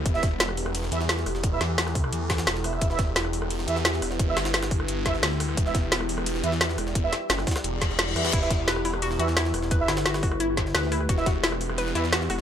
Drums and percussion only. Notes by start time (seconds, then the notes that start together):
0.06 kick, closed hi-hat
0.14 snare
0.23 kick, snare, closed hi-hat
0.40 snare, closed hi-hat
0.49 cross-stick
0.57 closed hi-hat, open hi-hat
0.66 cross-stick
0.75 closed hi-hat, open hi-hat
0.83 snare
0.92 closed hi-hat
1.00 snare
1.09 snare, closed hi-hat
1.18 snare
1.26 cross-stick, closed hi-hat, open hi-hat
1.35 snare
1.43 kick, closed hi-hat
1.61 snare, closed hi-hat
1.78 snare, closed hi-hat
1.87 cross-stick, snare
1.95 kick, closed hi-hat, open hi-hat
2.04 cross-stick
2.12 closed hi-hat
2.30 kick, snare, closed hi-hat
2.38 snare, closed hi-hat
2.47 snare, closed hi-hat
2.56 snare
2.64 cross-stick, closed hi-hat, open hi-hat
2.73 cross-stick
2.81 kick, closed hi-hat
2.90 snare
2.99 kick, snare, closed hi-hat
3.16 snare, closed hi-hat
3.25 cross-stick
3.33 closed hi-hat, open hi-hat
3.42 cross-stick
3.50 closed hi-hat, open hi-hat
3.59 snare
3.68 closed hi-hat
3.76 snare
3.85 snare, closed hi-hat
3.94 snare
4.02 cross-stick, closed hi-hat, open hi-hat
4.11 snare
4.19 kick, closed hi-hat
4.37 snare, closed hi-hat
4.45 snare, closed hi-hat
4.54 snare, closed hi-hat
4.62 cross-stick, snare, closed hi-hat
4.71 kick, closed hi-hat, open hi-hat
4.80 cross-stick
4.88 closed hi-hat
5.06 kick, snare, closed hi-hat
5.14 snare
5.23 snare, closed hi-hat
5.32 snare
5.40 cross-stick, closed hi-hat, open hi-hat
5.49 cross-stick
5.57 kick, closed hi-hat
5.66 snare
5.75 kick, snare, closed hi-hat
5.92 snare, closed hi-hat
6.00 cross-stick
6.09 closed hi-hat, open hi-hat
6.18 cross-stick
6.26 closed hi-hat, open hi-hat
6.35 snare
6.44 closed hi-hat
6.52 snare
6.61 snare, closed hi-hat
6.69 snare
6.78 cross-stick, closed hi-hat, open hi-hat
6.87 snare
6.95 kick, closed hi-hat
7.13 snare, closed hi-hat
7.30 snare, closed hi-hat
7.38 cross-stick, snare
7.47 kick, snare, closed hi-hat, open hi-hat
7.51 snare, closed hi-hat
7.56 cross-stick, snare, closed hi-hat
7.64 closed hi-hat
7.81 kick, snare, closed hi-hat
7.90 snare
7.99 snare, closed hi-hat
8.07 snare
8.16 cross-stick, closed hi-hat, open hi-hat
8.25 cross-stick, snare, closed hi-hat
8.33 kick, closed hi-hat, crash
8.42 snare
8.50 kick, snare, closed hi-hat
8.68 snare, closed hi-hat
8.76 cross-stick
8.85 closed hi-hat, open hi-hat
8.94 cross-stick
9.02 closed hi-hat, open hi-hat
9.11 snare
9.19 closed hi-hat
9.28 snare
9.37 snare, closed hi-hat
9.45 snare
9.54 cross-stick, closed hi-hat, open hi-hat
9.63 snare
9.71 kick, closed hi-hat
9.88 snare, closed hi-hat
9.97 snare, closed hi-hat
10.06 snare, closed hi-hat
10.14 cross-stick, snare, closed hi-hat
10.23 kick, closed hi-hat, open hi-hat
10.31 cross-stick
10.40 closed hi-hat
10.57 kick, snare, closed hi-hat
10.66 snare
10.75 snare, closed hi-hat
10.83 snare
10.92 cross-stick, closed hi-hat, open hi-hat
11.00 cross-stick
11.09 kick, closed hi-hat
11.18 snare
11.26 kick, snare, closed hi-hat
11.44 snare, closed hi-hat
11.52 cross-stick
11.61 closed hi-hat, open hi-hat
11.69 cross-stick
11.78 closed hi-hat, open hi-hat
11.87 snare
11.95 closed hi-hat
12.04 snare
12.13 snare, closed hi-hat
12.21 snare
12.30 cross-stick, closed hi-hat, open hi-hat